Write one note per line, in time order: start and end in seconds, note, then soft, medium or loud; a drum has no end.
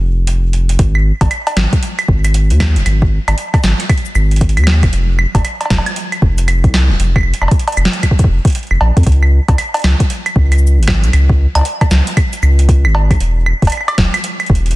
0.00 0.77 F1 medium
0.27 closed hi-hat medium
0.53 closed hi-hat soft
0.69 closed hi-hat soft
0.79 1.12 G#1 loud
0.79 kick loud
0.79 closed hi-hat medium
0.95 claves medium
1.21 1.27 G#1 medium
1.21 kick loud
1.21 closed hi-hat medium
1.21 cowbell medium
1.31 closed hi-hat medium
1.31 claves medium
1.47 closed hi-hat soft
1.47 cowbell medium
1.57 1.67 G#1 medium
1.57 snare loud
1.57 claves medium
1.73 kick loud
1.73 closed hi-hat medium
1.83 closed hi-hat medium
1.99 closed hi-hat soft
1.99 claves medium
2.08 2.52 G#1 medium
2.08 kick loud
2.25 closed hi-hat medium
2.25 cabasa medium
2.25 claves medium
2.34 closed hi-hat medium
2.50 2.78 D#2 medium
2.50 closed hi-hat soft
2.60 kick loud
2.60 snare loud
2.60 claves medium
2.76 2.82 F1 medium
2.76 closed hi-hat medium
2.86 3.19 G#1 loud
2.86 closed hi-hat medium
2.86 claves medium
3.02 kick loud
3.28 3.34 G#1 medium
3.28 closed hi-hat medium
3.28 cowbell medium
3.28 claves medium
3.38 closed hi-hat medium
3.54 kick loud
3.54 closed hi-hat soft
3.54 cowbell medium
3.54 claves medium
3.64 3.74 G#1 medium
3.64 snare loud
3.64 cabasa medium
3.80 closed hi-hat medium
3.89 kick loud
3.89 closed hi-hat medium
3.89 claves medium
3.97 closed hi-hat soft
4.05 cabasa medium
4.15 4.59 G#1 medium
4.15 cabasa medium
4.15 claves medium
4.31 closed hi-hat soft
4.36 closed hi-hat soft
4.41 kick loud
4.41 closed hi-hat medium
4.49 closed hi-hat soft
4.57 4.85 D#2 medium
4.57 closed hi-hat soft
4.57 claves medium
4.64 snare loud
4.64 claves medium
4.72 claves medium
4.83 4.89 F1 medium
4.83 kick loud
4.83 closed hi-hat medium
4.83 claves medium
4.93 5.26 F1 loud
4.93 closed hi-hat medium
5.19 claves medium
5.35 5.41 F1 medium
5.35 kick loud
5.35 closed hi-hat medium
5.35 cowbell medium
5.45 closed hi-hat medium
5.45 claves medium
5.61 closed hi-hat soft
5.61 cowbell soft
5.66 cowbell soft
5.70 5.81 F1 medium
5.70 kick loud
5.70 snare loud
5.70 cowbell medium
5.78 cowbell medium
5.86 closed hi-hat medium
5.86 claves medium
5.96 closed hi-hat medium
6.12 closed hi-hat soft
6.12 claves medium
6.22 6.66 F1 medium
6.22 kick loud
6.38 closed hi-hat medium
6.38 cabasa medium
6.48 closed hi-hat medium
6.48 claves medium
6.64 6.91 C2 medium
6.64 kick loud
6.64 closed hi-hat soft
6.74 snare loud
6.74 claves medium
6.90 6.96 D#1 medium
7.00 7.33 F1 loud
7.00 closed hi-hat medium
7.16 kick loud
7.16 claves medium
7.18 claves medium
7.21 claves soft
7.23 claves soft
7.34 closed hi-hat medium
7.42 7.48 F1 medium
7.42 cowbell soft
7.42 claves medium
7.48 kick loud
7.48 closed hi-hat medium
7.48 cowbell medium
7.59 closed hi-hat medium
7.68 closed hi-hat soft
7.68 cowbell medium
7.72 closed hi-hat soft
7.77 7.88 F1 medium
7.77 cabasa medium
7.77 claves medium
7.85 snare loud
7.93 closed hi-hat medium
8.03 kick soft
8.03 closed hi-hat medium
8.03 claves medium
8.11 kick medium
8.19 kick medium
8.19 closed hi-hat soft
8.19 cabasa medium
8.24 kick medium
8.29 8.39 F1 medium
8.45 kick loud
8.45 closed hi-hat soft
8.47 closed hi-hat soft
8.50 closed hi-hat soft
8.52 closed hi-hat soft
8.55 closed hi-hat medium
8.59 closed hi-hat soft
8.63 closed hi-hat soft
8.67 closed hi-hat soft
8.71 8.77 F1 medium
8.71 claves medium
8.81 8.91 A#1 medium
8.81 cowbell medium
8.97 9.03 F2 medium
8.97 kick loud
8.97 closed hi-hat medium
9.03 9.39 C#2 loud
9.03 kick loud
9.03 closed hi-hat soft
9.07 closed hi-hat medium
9.12 closed hi-hat soft
9.23 claves soft
9.48 9.55 C#2 medium
9.48 kick loud
9.48 closed hi-hat medium
9.48 cowbell medium
9.58 closed hi-hat medium
9.58 claves medium
9.74 closed hi-hat soft
9.74 cowbell medium
9.77 closed hi-hat soft
9.79 closed hi-hat soft
9.82 9.95 C#2 medium
9.82 snare loud
9.82 closed hi-hat soft
9.82 claves medium
10.00 kick loud
10.00 closed hi-hat medium
10.10 closed hi-hat medium
10.26 closed hi-hat soft
10.26 claves medium
10.36 10.79 C#2 medium
10.36 kick loud
10.52 closed hi-hat medium
10.52 cabasa soft
10.52 claves medium
10.58 cabasa medium
10.67 cabasa medium
10.78 11.05 G#1 medium
10.83 closed hi-hat soft
10.88 kick loud
10.88 snare loud
10.88 claves medium
11.04 11.10 B1 medium
11.04 closed hi-hat soft
11.13 11.46 C#2 loud
11.13 closed hi-hat medium
11.13 claves medium
11.30 kick loud
11.55 11.62 C#2 medium
11.55 closed hi-hat medium
11.55 cowbell medium
11.55 claves medium
11.57 cowbell medium
11.59 cowbell medium
11.61 cowbell soft
11.63 closed hi-hat medium
11.63 cowbell soft
11.81 kick loud
11.81 closed hi-hat soft
11.81 cowbell loud
11.81 claves medium
11.91 12.02 C#2 medium
11.91 snare loud
11.91 cabasa medium
12.07 closed hi-hat medium
12.17 kick loud
12.17 closed hi-hat medium
12.17 claves medium
12.33 closed hi-hat soft
12.33 cabasa medium
12.43 12.86 C#2 medium
12.43 cabasa medium
12.43 claves medium
12.59 closed hi-hat medium
12.69 kick loud
12.69 closed hi-hat medium
12.85 13.12 G#1 medium
12.85 claves medium
12.95 cowbell medium
13.11 13.17 B1 medium
13.11 kick loud
13.11 closed hi-hat medium
13.11 claves medium
13.20 13.53 E1 loud
13.20 closed hi-hat medium
13.46 claves medium
13.62 13.69 E1 medium
13.62 kick loud
13.62 closed hi-hat soft
13.65 closed hi-hat soft
13.67 closed hi-hat soft
13.67 cowbell medium
13.70 closed hi-hat soft
13.72 closed hi-hat medium
13.72 claves medium
13.77 claves soft
13.81 claves soft
13.88 closed hi-hat soft
13.88 cowbell loud
13.88 claves soft
13.95 14.08 E1 medium
13.95 kick loud
13.95 snare loud
13.95 claves soft
14.14 closed hi-hat medium
14.14 claves medium
14.24 closed hi-hat medium
14.40 closed hi-hat soft
14.40 claves medium
14.46 14.76 E1 medium
14.46 kick loud
14.46 closed hi-hat soft
14.55 closed hi-hat soft
14.66 closed hi-hat soft
14.71 closed hi-hat soft